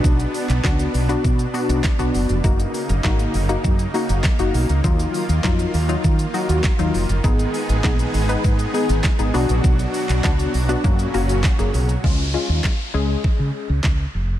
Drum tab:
HH |-xox-xox-xox-xox|-xox-xox-xox-xox|-xox-xox-xox-xox|-xox-xox-xox-xox|
SH |xxxxxxxxxxxxxxxx|xxxxxxxxxxxxxxxx|xxxxxxxxxxxxxxxx|xxxxxxxxxxxxxxxx|
CP |---xx-------x---|----x-------x---|----x-------x---|----x-------x---|
SD |----o-------o---|----o-------o---|----o-------o---|----o-------o---|
BD |o---o---o---o---|o---o---o---o---|o---o---o---o---|o---o---o---o---|

HH |-xox-xox-xox-xox|----------------|
SH |xxxxxxxxxxxxxxxx|----------------|
CP |---xx-------x---|----x-------x---|
SD |----o-------o---|----o-------o---|
BD |o---o---o---o---|o---o---o---o---|